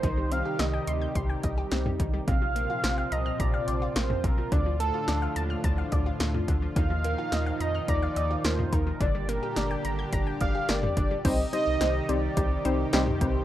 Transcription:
Already playing: D#3 D#4 C5
0.03 C2 C3 D#3 G3 G4, kick, closed hi-hat
0.18 G3
0.31 C4 F5, closed hi-hat
0.45 G4
0.59 C2 D#5, snare, closed hi-hat
0.73 G5
0.87 D2 C6, closed hi-hat
1.02 G6
1.15 C2 C6, kick, closed hi-hat
1.30 G5
1.43 C2 D#5, kick, closed hi-hat
1.58 G4
1.71 C2 C4, snare, closed hi-hat
1.86 G3, mid tom
2.00 C2 D#3, kick, closed hi-hat
2.14 G3
2.27 A#1 A#2 C3 F3 C4 F4 F5, kick, closed hi-hat
2.42 F3
2.56 A#3, closed hi-hat
2.70 F4
2.84 A#1 C5, snare, closed hi-hat
2.98 F5
3.12 C2 D#5 A#5, closed hi-hat
3.26 F6
3.40 A#1 D5 A#5, kick, closed hi-hat
3.54 F5
3.68 A#1 C5, closed hi-hat
3.82 F4
3.96 A#1 A#3 C5, snare, closed hi-hat
4.10 F3, mid tom
4.24 A#1 C3 A#4, kick, closed hi-hat
4.38 F3
4.52 D2 A2 D3 F3 D4 D5, kick, closed hi-hat
4.66 F3
4.80 A3 A4, closed hi-hat
4.94 F4
5.08 D2 D5, snare, closed hi-hat
5.22 F5
5.36 D#2 A5, closed hi-hat
5.50 F6
5.64 D2 A5, kick, closed hi-hat
5.78 F5
5.92 D2 D5, kick, closed hi-hat
6.06 F4
6.20 D2 A3, snare, closed hi-hat
6.34 F3, mid tom
6.48 D2 D3, kick, closed hi-hat
6.62 F3
6.76 D#2 A#2 D#3 F3 D#4 F5, kick, closed hi-hat
6.90 F3
7.04 A#3, closed hi-hat
7.18 F4
7.32 D#2 D#5, snare, closed hi-hat
7.46 F5
7.60 F2 D#5 A#5, closed hi-hat
7.75 F6
7.88 D#2 D5 A#5, kick, closed hi-hat
8.03 F5
8.16 D#2 D#5, closed hi-hat
8.31 F4
8.44 D#2 A#3 C5, snare, closed hi-hat
8.59 F3, mid tom
8.73 D#2 D#3 A#4, kick, closed hi-hat
8.87 F3
9.00 G1 D3 G3 D4 G4 D5, kick, closed hi-hat
9.15 G3
9.28 A#3 A#4, closed hi-hat
9.43 G4
9.56 G1 D5, snare, closed hi-hat
9.71 G5
9.85 G#1 A#5, closed hi-hat
9.99 G6
10.13 G1 A#5, kick, closed hi-hat
10.27 G5
10.41 G1 D5 F5, kick, closed hi-hat
10.55 G4
10.69 G1 A#3 D5, snare, closed hi-hat
10.83 G3, mid tom
10.97 G1 D3, kick, closed hi-hat
11.11 G3
11.25 C2 C3 D#3 G3 C4 D#4 G4 C5 D#5, kick, closed hi-hat, crash
11.53 G3 C4 D#4 G4 C5 D#5, closed hi-hat
11.67 C2
11.81 C2 G3 C4 D#4 G4 C5, snare, closed hi-hat
12.09 C2 G3 C4 D#4 G4 C5 D5, closed hi-hat
12.37 C2 G3 C4 D#4 G4 C5, kick, closed hi-hat
12.65 C2 G3 C4 D#4 G4 C5, closed hi-hat
12.93 C2 G3 C4 D#4 G4 C5, snare, closed hi-hat
13.07 mid tom
13.21 C2 G3 C4 D#4 G4 C5, kick, closed hi-hat

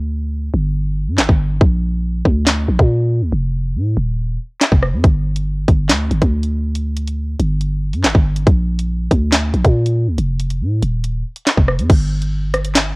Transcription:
Already playing: D2
0.54 G1
1.07 G2
1.18 G1, snare, clap
1.29 G1, kick
1.61 A#1, kick
2.25 D2, kick
2.47 snare, clap
2.68 A#1
2.79 A#2, kick
3.22 D2
3.33 F1
3.75 A2
3.97 D#1
4.61 snare, clap
4.72 F1, kick
4.83 cross-stick
4.93 F2
5.04 G1, kick, closed hi-hat
5.36 closed hi-hat
5.68 G1, kick, closed hi-hat
5.90 D2, snare, clap, closed hi-hat
6.11 G1, closed hi-hat
6.22 D2, kick, closed hi-hat
6.43 closed hi-hat
6.75 closed hi-hat
6.97 closed hi-hat
7.08 closed hi-hat
7.40 G1, closed hi-hat
7.61 closed hi-hat
7.93 G2, closed hi-hat
8.04 G1, snare, clap
8.15 G1, kick
8.36 closed hi-hat
8.47 A#1, kick, closed hi-hat
8.79 closed hi-hat
9.11 D2, kick, closed hi-hat
9.32 snare, clap, closed hi-hat
9.54 A#1, closed hi-hat
9.65 A#2, kick, closed hi-hat
9.86 closed hi-hat
10.07 D2
10.18 F1, closed hi-hat
10.40 closed hi-hat
10.50 closed hi-hat
10.61 A2
10.82 D#1, closed hi-hat
11.04 closed hi-hat
11.36 closed hi-hat
11.47 snare, clap
11.57 F1, kick
11.68 cross-stick
11.79 F2, closed hi-hat
11.90 G1, kick, closed hi-hat, crash
12.22 closed hi-hat
12.54 cross-stick, closed hi-hat
12.65 closed hi-hat
12.75 snare, clap

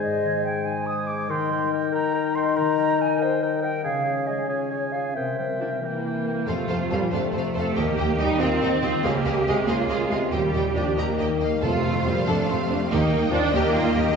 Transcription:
Already playing: D#3 G#3 D#4 G#4 C5 G#5
0.02 G#2 D#5
0.24 D#3
0.45 G#3 G5
0.65 D#4 G#5
0.86 C5 D#6
1.07 D#4 D6
1.29 D#3 D#4 A#4 G5 C6
1.50 G3 A#4 G5
1.71 D#4 A#4 G5
1.92 A#4 G5 A#5
2.14 G4 A#4 G5
2.35 A#4 G5 C6
2.56 D#3 A#4 G5 A#5
2.78 G3 A#4 G5
2.99 D#4 A#4 G5 G#5
3.19 A#4 C5 G5
3.41 G4 A#4 G5
3.61 A#4 G5
3.84 C#3 C#4 G#4 F5 G#5
4.04 C#4 G#4 G#5
4.27 G#3 G#4 D#5 G#5
4.48 F4 G#4 C#5 G#5
4.70 G#4 C#5 G#5
4.92 F4 G#4 F5 G#5
5.14 C3 C4 A#4 E5 G5
5.38 G3 A#4 G5
5.59 F3 C4 D4 A#4 G5
5.80 E3 A#3 G4 A#4
5.85 G5
6.03 A#4 G5
6.26 G4 A#4 G5
6.47 F2 C3 F3 A3 F4 A4 C5 F5
6.69 F2 F4 A4 C5 F5
6.91 F2 A#2 G3 A4 C5 F5
7.11 F2 C3 A3 D4 A4 C5 F5
7.33 F2 C4 A4 C5
7.37 F5
7.54 F2 F4 A4 C5 F5
7.76 D#2 D#3 A#3 G4 D#5 G5
7.98 D#2 G4 D#5 G5
8.19 D#2 G3 D#4 G4 D#5 G5
8.40 D#2 D#3 C4 F4 G4 D#5 G5
8.62 D#2 D#4 G4 D#5 G5
8.82 D#2 G3 F4 G4 D#5 G5
9.03 C#2 C#3 A#3 G4 G#4 D#5 F5
9.25 C#2 G#3 G#4 D#5 F5
9.45 C#2 C3 G#3 G#4 D#5 F5
9.66 C#2 C#3 A#3 F4 G#4 D#5 F5
9.89 C#2 G#4 D#5 F5
10.10 C#2 C3 G#3 G#4 D#5 F5
10.31 D#2 A#2 D#3 G3 G4 D#5 G5
10.54 D#2 G3 G4 D#5 G5
10.74 D#2 F3 D4 G4 D#5 G5
10.96 D#2 D#3 A#3 G4 D#5 A#5
11.19 D#2 G4 D#5 G5
11.40 D#2 G3 G4 D#5 F5
11.62 F2 C3 F3 A3 F4 A4 C5 F5
11.84 F2 F4
12.05 F2 A#2 G3 C4 A4
12.27 F2 C3 A3 D4 A4 F5
12.48 F2 C4 F4 A4
12.69 F2 C4 D4 F4
12.90 D#2 D#3 A#3 D#4 G4 D#5 G5
13.12 D#2 G3 D#4
13.31 D#2 F3 A#3 D4 D#5
13.53 D#2 D#3 A#3 G4
13.73 D#2 D#4 F4 D#5
13.94 D#2 G3 A#3 G4

